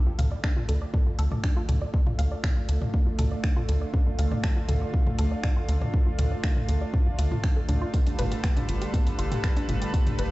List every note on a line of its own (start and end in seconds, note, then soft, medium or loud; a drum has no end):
0.00 10.31 D3 medium
0.00 7.90 A3 medium
0.00 10.31 A3 medium
0.00 10.31 D4 medium
0.00 10.31 F4 medium
0.07 0.10 F4 medium
0.19 0.36 D2 loud
0.19 0.22 F5 loud
0.19 closed hi-hat loud
0.19 mid tom medium
0.32 0.37 D5 medium
0.44 0.50 D4 loud
0.44 finger snap loud
0.44 kick loud
0.57 0.62 F4 medium
0.57 mid tom medium
0.69 0.86 D2 medium
0.69 0.78 A4 medium
0.69 closed hi-hat medium
0.82 0.87 D5 medium
0.94 0.97 D4 medium
0.94 kick loud
0.94 mid tom medium
1.07 1.10 F4 medium
1.19 1.36 D2 medium
1.19 1.25 A4 loud
1.19 closed hi-hat loud
1.32 1.40 D5 medium
1.32 mid tom medium
1.44 1.47 D4 medium
1.44 finger snap loud
1.44 kick loud
1.57 1.62 F4 loud
1.69 1.86 D2 medium
1.69 1.78 A4 medium
1.69 closed hi-hat medium
1.69 mid tom medium
1.82 1.87 D5 medium
1.94 1.97 D4 medium
1.94 kick loud
2.07 2.10 F4 medium
2.07 mid tom medium
2.19 2.36 D2 loud
2.19 2.22 F5 loud
2.19 closed hi-hat loud
2.32 2.37 D5 medium
2.44 2.50 D4 loud
2.44 finger snap loud
2.44 kick loud
2.44 mid tom medium
2.57 2.62 F4 medium
2.69 2.86 D2 medium
2.69 2.78 A4 medium
2.69 closed hi-hat medium
2.82 2.87 D5 medium
2.82 mid tom medium
2.94 2.97 D4 medium
2.94 kick loud
3.07 3.10 F4 medium
3.19 3.36 D2 medium
3.19 3.25 A4 loud
3.19 closed hi-hat loud
3.19 mid tom medium
3.32 3.40 D5 medium
3.44 3.47 D4 medium
3.44 finger snap loud
3.44 kick loud
3.57 3.62 F4 loud
3.57 mid tom medium
3.69 3.86 D2 medium
3.69 3.78 A4 medium
3.69 closed hi-hat medium
3.82 3.87 D5 medium
3.94 3.97 D4 medium
3.94 kick loud
3.94 mid tom medium
4.07 4.10 F4 medium
4.19 4.36 D2 medium
4.19 4.22 F5 loud
4.19 closed hi-hat loud
4.32 4.37 D5 medium
4.32 mid tom medium
4.44 4.50 D4 loud
4.44 finger snap loud
4.44 kick loud
4.57 4.62 F4 medium
4.69 4.86 D2 medium
4.69 4.78 A4 medium
4.69 closed hi-hat medium
4.69 mid tom medium
4.82 4.87 D5 medium
4.94 4.97 D4 medium
4.94 kick loud
5.07 5.10 F4 medium
5.07 mid tom medium
5.19 5.36 D2 medium
5.19 5.25 A4 loud
5.19 closed hi-hat loud
5.32 5.40 D5 medium
5.44 5.47 D4 medium
5.44 finger snap loud
5.44 kick loud
5.44 mid tom medium
5.57 5.62 F4 loud
5.69 5.86 D2 medium
5.69 5.78 A4 medium
5.69 closed hi-hat medium
5.82 5.87 D5 medium
5.82 mid tom medium
5.94 5.97 D4 medium
5.94 kick loud
6.07 6.10 F4 medium
6.19 6.36 D2 loud
6.19 6.22 F5 loud
6.19 closed hi-hat loud
6.19 mid tom medium
6.32 6.37 D5 medium
6.44 6.50 D4 loud
6.44 finger snap loud
6.44 kick loud
6.56 6.62 F4 medium
6.56 mid tom medium
6.69 6.86 D2 medium
6.69 6.78 A4 medium
6.69 closed hi-hat medium
6.82 6.87 D5 medium
6.94 6.97 D4 medium
6.94 kick loud
6.94 mid tom loud
7.07 7.10 F4 medium
7.19 7.36 D2 medium
7.19 7.22 F5 medium
7.19 closed hi-hat loud
7.32 7.37 F4 medium
7.32 mid tom medium
7.44 7.50 D4 medium
7.44 finger snap loud
7.44 kick loud
7.57 7.60 A4 medium
7.69 7.86 D2 medium
7.69 7.78 D4 loud
7.69 closed hi-hat loud
7.69 mid tom medium
7.82 7.85 F4 loud
7.94 10.31 G3 medium
7.94 7.97 B3 medium
7.94 10.31 A4 medium
7.94 10.31 B4 medium
7.94 kick loud
7.94 closed hi-hat medium
8.07 8.10 D4 medium
8.07 closed hi-hat soft
8.19 8.36 G1 loud
8.19 8.22 B4 loud
8.19 closed hi-hat loud
8.19 mid tom medium
8.32 8.37 G4 medium
8.32 closed hi-hat soft
8.44 8.50 B3 loud
8.44 finger snap loud
8.44 kick loud
8.44 closed hi-hat medium
8.57 8.62 D4 medium
8.57 closed hi-hat soft
8.57 mid tom medium
8.69 8.86 G1 medium
8.69 8.78 F4 medium
8.69 closed hi-hat medium
8.82 8.87 G4 medium
8.82 closed hi-hat soft
8.94 8.97 B3 medium
8.94 kick loud
8.94 closed hi-hat medium
8.94 mid tom loud
9.07 9.10 D4 medium
9.07 closed hi-hat soft
9.19 9.36 G1 medium
9.19 9.25 F4 loud
9.19 closed hi-hat loud
9.32 9.40 G4 medium
9.32 closed hi-hat soft
9.32 mid tom medium
9.44 9.47 B3 medium
9.44 finger snap loud
9.44 kick loud
9.44 closed hi-hat medium
9.57 9.62 D4 loud
9.57 closed hi-hat soft
9.69 9.86 G1 medium
9.69 9.78 F4 medium
9.69 closed hi-hat medium
9.69 mid tom medium
9.82 9.87 G4 medium
9.82 closed hi-hat soft
9.94 9.97 B3 medium
9.94 kick loud
9.94 closed hi-hat medium
10.07 10.10 D4 medium
10.07 closed hi-hat soft
10.07 mid tom medium
10.19 10.31 G1 loud
10.19 10.22 B4 loud
10.19 closed hi-hat loud